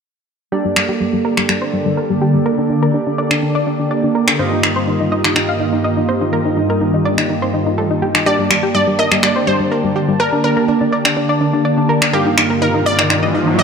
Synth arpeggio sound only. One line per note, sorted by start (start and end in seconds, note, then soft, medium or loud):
0.52 0.61 G4 medium
0.65 0.73 G3 medium
0.76 0.86 G3 medium
0.89 0.97 G4 medium
1.01 1.10 G3 medium
1.13 1.22 G3 medium
1.25 1.34 A#4 medium
1.37 1.46 G3 medium
1.49 1.58 G3 medium
1.62 1.70 C5 medium
1.73 1.82 G3 medium
1.86 1.94 G3 medium
1.97 2.07 A#4 medium
2.10 2.18 G3 medium
2.22 2.31 G4 medium
2.34 2.43 G3 medium
2.46 2.55 A#4 medium
2.58 2.67 D4 medium
2.70 2.79 D4 medium
2.83 2.91 A#4 medium
2.94 3.03 D4 medium
3.07 3.15 D4 medium
3.18 3.28 D5 medium
3.31 3.39 D4 medium
3.42 3.52 D4 medium
3.55 3.64 D5 medium
3.67 3.76 D4 medium
3.79 3.88 D4 medium
3.91 4.00 D5 medium
4.04 4.12 D4 medium
4.15 4.24 A#4 medium
4.28 4.36 D4 medium
4.39 4.49 C5 medium
4.52 4.60 D#4 medium
4.63 4.73 D#4 medium
4.76 4.85 C5 medium
4.88 4.97 D#4 medium
5.00 5.09 D#4 medium
5.12 5.21 D#5 medium
5.25 5.33 D#4 medium
5.36 5.45 D#4 medium
5.49 5.57 F5 medium
5.60 5.69 D#4 medium
5.73 5.81 D#4 medium
5.84 5.94 D#5 medium
5.97 6.06 D#4 medium
6.09 6.18 C5 medium
6.21 6.30 D#4 medium
6.33 6.42 A#4 medium
6.46 6.54 D#4 medium
6.57 6.66 D#4 medium
6.70 6.78 A#4 medium
6.81 6.91 D#4 medium
6.94 7.02 D#4 medium
7.05 7.15 D5 medium
7.18 7.27 D#4 medium
7.30 7.39 D#4 medium
7.42 7.51 C5 medium
7.54 7.63 D#4 medium
7.67 7.75 D#4 medium
7.78 7.87 A4 medium
7.91 7.99 D#4 medium
8.02 8.11 G4 medium
8.15 8.23 D#4 medium
8.26 8.36 G4 medium
8.39 8.47 G3 medium
8.51 8.60 G3 medium
8.63 8.72 G4 medium
8.75 8.84 G3 medium
8.87 8.96 G3 medium
8.99 9.08 A#4 medium
9.12 9.20 G3 medium
9.23 9.32 G3 medium
9.36 9.44 C5 medium
9.47 9.57 G3 medium
9.60 9.68 G3 medium
9.72 9.81 A#4 medium
9.84 9.93 G3 medium
9.96 10.05 G4 medium
10.08 10.17 G3 medium
10.20 10.29 A#4 medium
10.33 10.41 D4 medium
10.44 10.53 D4 medium
10.57 10.65 A#4 medium
10.68 10.78 D4 medium
10.81 10.89 D4 medium
10.92 11.02 D5 medium
11.05 11.14 D4 medium
11.17 11.26 D4 medium
11.29 11.38 D5 medium
11.41 11.50 D4 medium
11.53 11.62 D4 medium
11.65 11.74 D5 medium
11.78 11.86 D4 medium
11.89 11.99 A#4 medium
12.02 12.10 D4 medium
12.13 12.23 A#4 medium
12.26 12.35 D#4 medium
12.38 12.47 D#4 medium
12.50 12.59 A#4 medium
12.62 12.71 D#4 medium
12.74 12.83 D#4 medium
12.86 12.95 D5 medium
12.99 13.07 D#4 medium
13.10 13.19 D#4 medium
13.23 13.31 D#5 medium
13.34 13.44 D#4 medium
13.47 13.56 D#4 medium
13.59 13.63 D5 medium